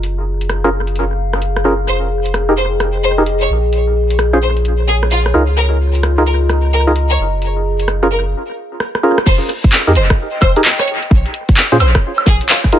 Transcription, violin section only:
0, 0, Header, 1, 2, 480
1, 0, Start_track
1, 0, Tempo, 461538
1, 35, Time_signature, 4, 2, 24, 8
1, 13303, End_track
2, 0, Start_track
2, 0, Title_t, "Violin section"
2, 0, Program_c, 0, 48
2, 1956, Note_on_c, 0, 72, 92
2, 2040, Note_off_c, 0, 72, 0
2, 2676, Note_on_c, 0, 72, 88
2, 2759, Note_off_c, 0, 72, 0
2, 3154, Note_on_c, 0, 72, 92
2, 3237, Note_off_c, 0, 72, 0
2, 3550, Note_on_c, 0, 73, 86
2, 3633, Note_off_c, 0, 73, 0
2, 4598, Note_on_c, 0, 72, 81
2, 4681, Note_off_c, 0, 72, 0
2, 5075, Note_on_c, 0, 68, 86
2, 5158, Note_off_c, 0, 68, 0
2, 5319, Note_on_c, 0, 65, 88
2, 5402, Note_off_c, 0, 65, 0
2, 5796, Note_on_c, 0, 70, 94
2, 5879, Note_off_c, 0, 70, 0
2, 6518, Note_on_c, 0, 70, 85
2, 6601, Note_off_c, 0, 70, 0
2, 7001, Note_on_c, 0, 70, 90
2, 7084, Note_off_c, 0, 70, 0
2, 7391, Note_on_c, 0, 73, 87
2, 7474, Note_off_c, 0, 73, 0
2, 8437, Note_on_c, 0, 70, 82
2, 8520, Note_off_c, 0, 70, 0
2, 9634, Note_on_c, 0, 72, 100
2, 9717, Note_off_c, 0, 72, 0
2, 10354, Note_on_c, 0, 72, 94
2, 10437, Note_off_c, 0, 72, 0
2, 10836, Note_on_c, 0, 72, 96
2, 10919, Note_off_c, 0, 72, 0
2, 11228, Note_on_c, 0, 73, 93
2, 11311, Note_off_c, 0, 73, 0
2, 12278, Note_on_c, 0, 72, 88
2, 12361, Note_off_c, 0, 72, 0
2, 12760, Note_on_c, 0, 68, 95
2, 12843, Note_off_c, 0, 68, 0
2, 12998, Note_on_c, 0, 65, 99
2, 13081, Note_off_c, 0, 65, 0
2, 13303, End_track
0, 0, End_of_file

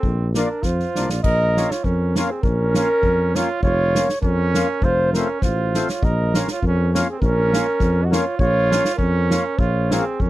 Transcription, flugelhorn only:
0, 0, Header, 1, 2, 480
1, 0, Start_track
1, 0, Key_signature, -5, "minor"
1, 0, Tempo, 606673
1, 24, Time_signature, 2, 2, 24, 8
1, 1464, Tempo, 597015
1, 8257, End_track
2, 0, Start_track
2, 0, Title_t, "Flugelhorn"
2, 0, Program_c, 0, 56
2, 0, Note_on_c, 0, 69, 74
2, 142, Note_off_c, 0, 69, 0
2, 277, Note_on_c, 0, 70, 87
2, 520, Note_on_c, 0, 72, 78
2, 532, Note_off_c, 0, 70, 0
2, 874, Note_on_c, 0, 74, 65
2, 886, Note_off_c, 0, 72, 0
2, 967, Note_off_c, 0, 74, 0
2, 972, Note_on_c, 0, 75, 123
2, 1351, Note_on_c, 0, 73, 90
2, 1362, Note_off_c, 0, 75, 0
2, 1468, Note_on_c, 0, 70, 79
2, 1480, Note_off_c, 0, 73, 0
2, 1728, Note_on_c, 0, 73, 86
2, 1740, Note_off_c, 0, 70, 0
2, 1832, Note_on_c, 0, 68, 66
2, 1844, Note_off_c, 0, 73, 0
2, 1923, Note_off_c, 0, 68, 0
2, 1928, Note_on_c, 0, 70, 127
2, 2671, Note_on_c, 0, 73, 92
2, 2683, Note_off_c, 0, 70, 0
2, 2885, Note_off_c, 0, 73, 0
2, 2890, Note_on_c, 0, 73, 122
2, 3342, Note_off_c, 0, 73, 0
2, 3367, Note_on_c, 0, 70, 85
2, 3857, Note_on_c, 0, 72, 116
2, 3869, Note_off_c, 0, 70, 0
2, 4095, Note_off_c, 0, 72, 0
2, 4100, Note_on_c, 0, 70, 88
2, 4316, Note_off_c, 0, 70, 0
2, 4326, Note_on_c, 0, 72, 78
2, 4703, Note_on_c, 0, 73, 83
2, 4715, Note_off_c, 0, 72, 0
2, 4825, Note_on_c, 0, 75, 119
2, 4837, Note_off_c, 0, 73, 0
2, 5092, Note_off_c, 0, 75, 0
2, 5205, Note_on_c, 0, 73, 78
2, 5299, Note_off_c, 0, 73, 0
2, 5304, Note_on_c, 0, 70, 72
2, 5550, Note_off_c, 0, 70, 0
2, 5677, Note_on_c, 0, 68, 64
2, 5756, Note_off_c, 0, 68, 0
2, 5760, Note_on_c, 0, 70, 116
2, 6426, Note_on_c, 0, 75, 55
2, 6438, Note_off_c, 0, 70, 0
2, 6509, Note_on_c, 0, 73, 88
2, 6521, Note_off_c, 0, 75, 0
2, 6711, Note_off_c, 0, 73, 0
2, 6716, Note_on_c, 0, 73, 125
2, 7168, Note_off_c, 0, 73, 0
2, 7180, Note_on_c, 0, 70, 82
2, 7675, Note_on_c, 0, 73, 102
2, 7687, Note_off_c, 0, 70, 0
2, 7953, Note_on_c, 0, 68, 81
2, 7965, Note_off_c, 0, 73, 0
2, 8197, Note_on_c, 0, 70, 62
2, 8209, Note_off_c, 0, 68, 0
2, 8257, Note_off_c, 0, 70, 0
2, 8257, End_track
0, 0, End_of_file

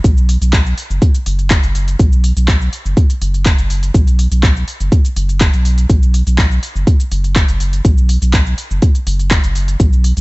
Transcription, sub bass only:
0, 0, Header, 1, 2, 480
1, 0, Start_track
1, 0, Tempo, 487805
1, 42, Time_signature, 4, 2, 24, 8
1, 10045, End_track
2, 0, Start_track
2, 0, Title_t, "Sub bass"
2, 0, Program_c, 0, 38
2, 42, Note_on_c, 0, 35, 98
2, 365, Note_off_c, 0, 35, 0
2, 406, Note_on_c, 0, 35, 98
2, 723, Note_off_c, 0, 35, 0
2, 886, Note_on_c, 0, 30, 85
2, 978, Note_off_c, 0, 30, 0
2, 1243, Note_on_c, 0, 30, 89
2, 1566, Note_off_c, 0, 30, 0
2, 1608, Note_on_c, 0, 30, 81
2, 1924, Note_off_c, 0, 30, 0
2, 1962, Note_on_c, 0, 35, 98
2, 2286, Note_off_c, 0, 35, 0
2, 2326, Note_on_c, 0, 35, 99
2, 2644, Note_off_c, 0, 35, 0
2, 2807, Note_on_c, 0, 30, 84
2, 2898, Note_off_c, 0, 30, 0
2, 3162, Note_on_c, 0, 30, 93
2, 3486, Note_off_c, 0, 30, 0
2, 3526, Note_on_c, 0, 30, 78
2, 3844, Note_off_c, 0, 30, 0
2, 3880, Note_on_c, 0, 35, 96
2, 4204, Note_off_c, 0, 35, 0
2, 4243, Note_on_c, 0, 35, 93
2, 4562, Note_off_c, 0, 35, 0
2, 4726, Note_on_c, 0, 30, 85
2, 4817, Note_off_c, 0, 30, 0
2, 5080, Note_on_c, 0, 30, 94
2, 5405, Note_off_c, 0, 30, 0
2, 5446, Note_on_c, 0, 35, 83
2, 5763, Note_off_c, 0, 35, 0
2, 5800, Note_on_c, 0, 35, 94
2, 6125, Note_off_c, 0, 35, 0
2, 6166, Note_on_c, 0, 35, 98
2, 6483, Note_off_c, 0, 35, 0
2, 6644, Note_on_c, 0, 30, 86
2, 6737, Note_off_c, 0, 30, 0
2, 7000, Note_on_c, 0, 30, 91
2, 7325, Note_off_c, 0, 30, 0
2, 7367, Note_on_c, 0, 30, 82
2, 7684, Note_off_c, 0, 30, 0
2, 7721, Note_on_c, 0, 35, 96
2, 8045, Note_off_c, 0, 35, 0
2, 8086, Note_on_c, 0, 35, 97
2, 8403, Note_off_c, 0, 35, 0
2, 8567, Note_on_c, 0, 30, 88
2, 8658, Note_off_c, 0, 30, 0
2, 8920, Note_on_c, 0, 30, 97
2, 9244, Note_off_c, 0, 30, 0
2, 9285, Note_on_c, 0, 30, 81
2, 9603, Note_off_c, 0, 30, 0
2, 9640, Note_on_c, 0, 35, 102
2, 9965, Note_off_c, 0, 35, 0
2, 10005, Note_on_c, 0, 35, 98
2, 10045, Note_off_c, 0, 35, 0
2, 10045, End_track
0, 0, End_of_file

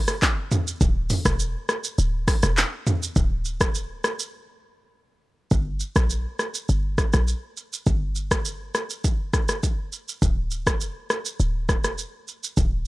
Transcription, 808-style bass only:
0, 0, Header, 1, 2, 480
1, 0, Start_track
1, 0, Tempo, 588235
1, 659, Time_signature, 4, 2, 24, 8
1, 10502, End_track
2, 0, Start_track
2, 0, Title_t, "808-style bass"
2, 0, Program_c, 0, 38
2, 660, Note_on_c, 0, 26, 104
2, 917, Note_off_c, 0, 26, 0
2, 1024, Note_on_c, 0, 28, 102
2, 1274, Note_off_c, 0, 28, 0
2, 1619, Note_on_c, 0, 26, 97
2, 1877, Note_off_c, 0, 26, 0
2, 1985, Note_on_c, 0, 28, 87
2, 2154, Note_off_c, 0, 28, 0
2, 2579, Note_on_c, 0, 26, 107
2, 3267, Note_off_c, 0, 26, 0
2, 4499, Note_on_c, 0, 31, 111
2, 4756, Note_off_c, 0, 31, 0
2, 4862, Note_on_c, 0, 34, 91
2, 5113, Note_off_c, 0, 34, 0
2, 5459, Note_on_c, 0, 31, 84
2, 5717, Note_off_c, 0, 31, 0
2, 5824, Note_on_c, 0, 34, 93
2, 5994, Note_off_c, 0, 34, 0
2, 6418, Note_on_c, 0, 31, 110
2, 7106, Note_off_c, 0, 31, 0
2, 8340, Note_on_c, 0, 26, 105
2, 8704, Note_on_c, 0, 28, 83
2, 8716, Note_off_c, 0, 26, 0
2, 8955, Note_off_c, 0, 28, 0
2, 9300, Note_on_c, 0, 26, 91
2, 9666, Note_on_c, 0, 28, 91
2, 9678, Note_off_c, 0, 26, 0
2, 9834, Note_off_c, 0, 28, 0
2, 10260, Note_on_c, 0, 26, 112
2, 10502, Note_off_c, 0, 26, 0
2, 10502, End_track
0, 0, End_of_file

